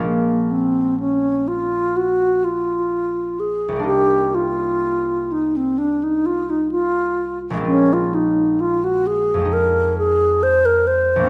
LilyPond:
<<
  \new Staff \with { instrumentName = "Alto flute" } { \time 4/4 \key bes \minor \tempo 4 = 63 bes8 c'8 des'8 f'8 ges'8 f'4 aes'8 | g'8 f'4 ees'16 c'16 d'16 ees'16 f'16 ees'16 f'8. r16 | des'16 f'16 ees'8 f'16 ges'16 aes'8 bes'8 aes'8 c''16 bes'16 c''8 | }
  \new Staff \with { instrumentName = "Harp" } { \time 4/4 \key bes \minor <bes,, aes bes des' f'>1 | <c, g bes d' ees'>1 | <bes,, aes bes c' f'>2 <f, aes c' ees'>2 | }
>>